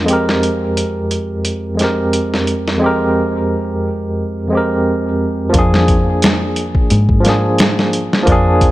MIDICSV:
0, 0, Header, 1, 4, 480
1, 0, Start_track
1, 0, Tempo, 681818
1, 64, Time_signature, 4, 2, 24, 8
1, 6135, End_track
2, 0, Start_track
2, 0, Title_t, "Tine electric piano"
2, 0, Program_c, 0, 4
2, 0, Control_c, 0, 64, 127
2, 0, Note_on_c, 0, 41, 67
2, 0, Note_on_c, 0, 56, 64
2, 0, Note_on_c, 0, 62, 62
2, 0, Note_on_c, 0, 65, 60
2, 0, Note_on_c, 0, 70, 79
2, 29, Note_off_c, 0, 41, 0
2, 29, Note_on_c, 0, 41, 87
2, 43, Note_off_c, 0, 56, 0
2, 43, Note_on_c, 0, 56, 76
2, 61, Note_on_c, 0, 60, 76
2, 72, Control_c, 0, 64, 0
2, 76, Note_on_c, 0, 67, 81
2, 77, Note_off_c, 0, 62, 0
2, 77, Note_off_c, 0, 65, 0
2, 78, Note_off_c, 0, 70, 0
2, 92, Note_on_c, 0, 70, 90
2, 197, Control_c, 0, 64, 127
2, 1220, Note_off_c, 0, 41, 0
2, 1227, Note_off_c, 0, 56, 0
2, 1231, Note_on_c, 0, 41, 67
2, 1236, Note_off_c, 0, 60, 0
2, 1243, Note_off_c, 0, 67, 0
2, 1248, Note_on_c, 0, 56, 64
2, 1251, Note_off_c, 0, 70, 0
2, 1265, Note_on_c, 0, 60, 61
2, 1280, Note_on_c, 0, 67, 65
2, 1295, Note_on_c, 0, 70, 79
2, 1941, Note_off_c, 0, 41, 0
2, 1949, Note_off_c, 0, 56, 0
2, 1951, Note_on_c, 0, 41, 84
2, 1958, Note_off_c, 0, 60, 0
2, 1965, Note_off_c, 0, 67, 0
2, 1967, Note_on_c, 0, 56, 78
2, 1973, Note_off_c, 0, 70, 0
2, 1983, Note_on_c, 0, 60, 77
2, 1999, Note_on_c, 0, 67, 76
2, 2013, Note_on_c, 0, 70, 92
2, 3141, Note_off_c, 0, 41, 0
2, 3149, Note_off_c, 0, 56, 0
2, 3154, Note_on_c, 0, 41, 75
2, 3157, Note_off_c, 0, 60, 0
2, 3165, Note_off_c, 0, 67, 0
2, 3171, Note_on_c, 0, 56, 69
2, 3172, Note_off_c, 0, 70, 0
2, 3188, Note_on_c, 0, 60, 66
2, 3202, Note_on_c, 0, 67, 68
2, 3219, Note_on_c, 0, 70, 79
2, 3862, Note_off_c, 0, 41, 0
2, 3868, Note_on_c, 0, 53, 96
2, 3871, Note_off_c, 0, 56, 0
2, 3879, Note_off_c, 0, 60, 0
2, 3887, Note_off_c, 0, 67, 0
2, 3891, Note_on_c, 0, 58, 87
2, 3895, Note_off_c, 0, 70, 0
2, 3909, Note_on_c, 0, 62, 86
2, 3913, Control_c, 0, 64, 0
2, 3932, Note_on_c, 0, 68, 108
2, 4023, Control_c, 0, 64, 127
2, 5059, Note_off_c, 0, 53, 0
2, 5071, Note_off_c, 0, 58, 0
2, 5071, Note_on_c, 0, 53, 79
2, 5080, Note_off_c, 0, 62, 0
2, 5091, Note_off_c, 0, 68, 0
2, 5094, Note_on_c, 0, 58, 73
2, 5113, Note_on_c, 0, 62, 68
2, 5133, Note_on_c, 0, 68, 82
2, 5781, Note_off_c, 0, 53, 0
2, 5793, Note_off_c, 0, 58, 0
2, 5793, Note_on_c, 0, 53, 97
2, 5802, Note_off_c, 0, 62, 0
2, 5812, Note_off_c, 0, 68, 0
2, 5813, Note_on_c, 0, 58, 88
2, 5838, Note_on_c, 0, 62, 91
2, 5856, Note_on_c, 0, 68, 101
2, 6135, Note_off_c, 0, 53, 0
2, 6135, Note_off_c, 0, 58, 0
2, 6135, Note_off_c, 0, 62, 0
2, 6135, Note_off_c, 0, 68, 0
2, 6135, End_track
3, 0, Start_track
3, 0, Title_t, "Fingered electric bass"
3, 0, Program_c, 1, 33
3, 3901, Note_on_c, 1, 41, 91
3, 4727, Note_off_c, 1, 41, 0
3, 4867, Note_on_c, 1, 44, 84
3, 5690, Note_off_c, 1, 44, 0
3, 5823, Note_on_c, 1, 41, 94
3, 6135, Note_off_c, 1, 41, 0
3, 6135, End_track
4, 0, Start_track
4, 0, Title_t, "Drums"
4, 58, Note_on_c, 9, 42, 77
4, 129, Note_off_c, 9, 42, 0
4, 203, Note_on_c, 9, 38, 46
4, 274, Note_off_c, 9, 38, 0
4, 304, Note_on_c, 9, 42, 61
4, 374, Note_off_c, 9, 42, 0
4, 543, Note_on_c, 9, 42, 77
4, 614, Note_off_c, 9, 42, 0
4, 781, Note_on_c, 9, 42, 59
4, 851, Note_off_c, 9, 42, 0
4, 1019, Note_on_c, 9, 42, 78
4, 1089, Note_off_c, 9, 42, 0
4, 1261, Note_on_c, 9, 42, 56
4, 1273, Note_on_c, 9, 38, 31
4, 1332, Note_off_c, 9, 42, 0
4, 1344, Note_off_c, 9, 38, 0
4, 1501, Note_on_c, 9, 42, 74
4, 1571, Note_off_c, 9, 42, 0
4, 1645, Note_on_c, 9, 38, 38
4, 1716, Note_off_c, 9, 38, 0
4, 1741, Note_on_c, 9, 42, 57
4, 1811, Note_off_c, 9, 42, 0
4, 1884, Note_on_c, 9, 38, 43
4, 1954, Note_off_c, 9, 38, 0
4, 3899, Note_on_c, 9, 42, 81
4, 3901, Note_on_c, 9, 36, 105
4, 3969, Note_off_c, 9, 42, 0
4, 3972, Note_off_c, 9, 36, 0
4, 4041, Note_on_c, 9, 38, 55
4, 4111, Note_off_c, 9, 38, 0
4, 4141, Note_on_c, 9, 42, 73
4, 4142, Note_on_c, 9, 36, 96
4, 4211, Note_off_c, 9, 42, 0
4, 4212, Note_off_c, 9, 36, 0
4, 4381, Note_on_c, 9, 42, 92
4, 4393, Note_on_c, 9, 38, 125
4, 4451, Note_off_c, 9, 42, 0
4, 4463, Note_off_c, 9, 38, 0
4, 4620, Note_on_c, 9, 42, 70
4, 4690, Note_off_c, 9, 42, 0
4, 4750, Note_on_c, 9, 36, 95
4, 4820, Note_off_c, 9, 36, 0
4, 4860, Note_on_c, 9, 42, 91
4, 4930, Note_off_c, 9, 42, 0
4, 4990, Note_on_c, 9, 36, 89
4, 5061, Note_off_c, 9, 36, 0
4, 5102, Note_on_c, 9, 42, 66
4, 5114, Note_on_c, 9, 38, 38
4, 5172, Note_off_c, 9, 42, 0
4, 5184, Note_off_c, 9, 38, 0
4, 5340, Note_on_c, 9, 42, 83
4, 5352, Note_on_c, 9, 38, 109
4, 5410, Note_off_c, 9, 42, 0
4, 5422, Note_off_c, 9, 38, 0
4, 5484, Note_on_c, 9, 38, 44
4, 5554, Note_off_c, 9, 38, 0
4, 5584, Note_on_c, 9, 42, 67
4, 5654, Note_off_c, 9, 42, 0
4, 5725, Note_on_c, 9, 38, 46
4, 5795, Note_off_c, 9, 38, 0
4, 5822, Note_on_c, 9, 42, 88
4, 5823, Note_on_c, 9, 36, 103
4, 5892, Note_off_c, 9, 42, 0
4, 5893, Note_off_c, 9, 36, 0
4, 6062, Note_on_c, 9, 36, 96
4, 6063, Note_on_c, 9, 42, 68
4, 6133, Note_off_c, 9, 36, 0
4, 6133, Note_off_c, 9, 42, 0
4, 6135, End_track
0, 0, End_of_file